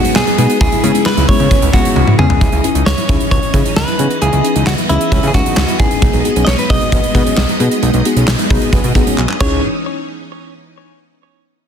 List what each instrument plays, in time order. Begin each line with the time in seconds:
Already playing: synth keys G#3 B3 D#4 F#4 G#4, string machine G#3 B3 D#4, clean electric guitar F#4
0.04 nylon-string guitar C#4, closed hi-hat
0.16 analog synth bass B1, clean electric guitar G#4, snare, clap
0.27 nylon-string guitar D#4, closed hi-hat
0.38 analog synth bass B2, synth keys G#3 B3 D#4 F#4 G#4, nylon-string guitar B3, closed hi-hat
0.50 closed hi-hat
0.61 analog synth bass C#2, string machine C#3 E4, nylon-string guitar E4, clean electric guitar G#4, kick, closed hi-hat
0.72 nylon-string guitar E4, closed hi-hat
0.83 analog synth bass C#3, synth keys G#3 B3 C#4 E4 G#4, closed hi-hat
0.95 synth keys G#3 B3 C#4 E4 G#4, nylon-string guitar D#4, closed hi-hat
1.06 clean electric guitar B4, snare, clap
1.17 analog synth bass C#2, nylon-string guitar E4, closed hi-hat
1.29 synth keys G#3 B3 C#4 E4 G#4, nylon-string guitar E4, clean electric guitar C#5, kick, open hi-hat
1.40 analog synth bass C#3, closed hi-hat
1.51 nylon-string guitar C#4, kick, closed hi-hat
1.62 analog synth bass C#2, closed hi-hat
1.73 analog synth bass C#2, synth keys G#3 B3 C#4 E4 G#4, nylon-string guitar E4, clean electric guitar F#4, kick, closed hi-hat
1.85 nylon-string guitar D#4, closed hi-hat
1.96 analog synth bass C#2, high tom
2.07 nylon-string guitar E4, mid tom
2.19 analog synth bass C#3, synth keys G#3 B3 C#4 E4 G#4, nylon-string guitar B3, clean electric guitar G#4, mid tom
2.30 floor tom
2.41 analog synth bass C#2, string machine E3 C#4 D#5, nylon-string guitar E4, kick, closed hi-hat
2.52 analog synth bass C#2, nylon-string guitar E4, closed hi-hat
2.64 synth keys C#4 D#4 E4 G#4, closed hi-hat
2.75 analog synth bass C#2, nylon-string guitar D#4, closed hi-hat
2.86 analog synth bass C#2, clean electric guitar C#5, snare
2.98 nylon-string guitar E4, closed hi-hat
3.09 analog synth bass C#2, synth keys C#4 D#4 E4 G#4, nylon-string guitar E4, kick, closed hi-hat
3.20 closed hi-hat
3.31 analog synth bass C#2, nylon-string guitar C#4, clean electric guitar C#5, kick, closed hi-hat
3.43 closed hi-hat
3.54 analog synth bass C#3, synth keys C#4 D#4 E4 G#4, nylon-string guitar E4, kick, closed hi-hat
3.65 nylon-string guitar D#4, closed hi-hat
3.76 analog synth bass C#2, clean electric guitar B4, snare
3.88 nylon-string guitar E4, closed hi-hat
3.99 analog synth bass C#3, nylon-string guitar B3, synth keys C#4 D#4 E4 G#4, closed hi-hat
4.10 closed hi-hat
4.22 analog synth bass C#2, string machine B3, nylon-string guitar E4, clean electric guitar G#4, closed hi-hat
4.33 analog synth bass C#2, nylon-string guitar E4, closed hi-hat
4.44 synth keys C#4 D#4 E4 G#4, closed hi-hat
4.56 analog synth bass C#2, nylon-string guitar D#4, closed hi-hat
4.67 analog synth bass C#2, clean electric guitar F#4, snare, clap
4.78 nylon-string guitar E4, closed hi-hat
4.89 analog synth bass C#2, synth keys C#4 D#4 E4 G#4, clean electric guitar E4, nylon-string guitar E4, closed hi-hat
5.01 closed hi-hat
5.12 analog synth bass C#2, nylon-string guitar C#4, kick, closed hi-hat
5.23 analog synth bass C#3, closed hi-hat
5.27 clean electric guitar G#4
5.34 analog synth bass C#2, synth keys C#4 D#4 E4 G#4, nylon-string guitar E4, clean electric guitar F#4, kick, closed hi-hat
5.46 nylon-string guitar D#4, closed hi-hat
5.57 analog synth bass C#2, snare, clap
5.68 nylon-string guitar E4, closed hi-hat
5.79 analog synth bass A1, nylon-string guitar B3, synth keys C#4 D#4 E4 G#4, clean electric guitar G#4, kick, closed hi-hat
5.91 closed hi-hat
6.02 analog synth bass B1, string machine G#3, nylon-string guitar D#4, kick, closed hi-hat
6.13 analog synth bass B1, nylon-string guitar D#4, closed hi-hat
6.25 synth keys B3 D#4 F#4 G#4, closed hi-hat
6.36 analog synth bass B1, nylon-string guitar C#4, closed hi-hat
6.45 analog synth bass B1, clean electric guitar C#5 D#5, snare, clap
6.59 nylon-string guitar D#4, clean electric guitar B4, closed hi-hat
6.70 analog synth bass B1, synth keys B3 D#4 F#4 G#4, nylon-string guitar D#4, clean electric guitar D#5, kick, open hi-hat
6.81 closed hi-hat
6.92 analog synth bass B1, nylon-string guitar B3, kick, closed hi-hat
7.04 closed hi-hat
7.15 analog synth bass B2, synth keys B3 D#4 F#4 G#4, nylon-string guitar D#4, kick, closed hi-hat
7.26 nylon-string guitar C#4, closed hi-hat
7.37 analog synth bass B1, snare, clap
7.49 nylon-string guitar D#4, closed hi-hat
7.60 analog synth bass B2, synth keys B3 D#4 F#4 G#4, nylon-string guitar B3, closed hi-hat
7.71 closed hi-hat
7.83 analog synth bass B1, nylon-string guitar D#4, closed hi-hat
7.94 analog synth bass B1, nylon-string guitar D#4, closed hi-hat
8.05 synth keys B3 D#4 F#4 G#4, closed hi-hat
8.16 analog synth bass B1, nylon-string guitar C#4, closed hi-hat
8.28 analog synth bass B1, snare, clap
8.39 nylon-string guitar D#4, closed hi-hat
8.50 analog synth bass B1, synth keys B3 D#4 F#4 G#4 B5, nylon-string guitar D#4, kick, open hi-hat
8.62 closed hi-hat
8.73 analog synth bass B1, nylon-string guitar B3, synth keys G#5, kick, closed hi-hat
8.84 analog synth bass B2, closed hi-hat
8.95 analog synth bass B1, synth keys B3 D#4 F#4 G#4 F#5, nylon-string guitar D#4, kick, closed hi-hat
9.07 nylon-string guitar C#4, closed hi-hat
9.18 analog synth bass B1, synth keys G#5, clap
9.29 nylon-string guitar D#4, clap
9.40 analog synth bass C#2, string machine E3 C#4 D#4, nylon-string guitar C#4, synth keys C#4 D#4 E4 G#4, clean electric guitar C#5, kick, crash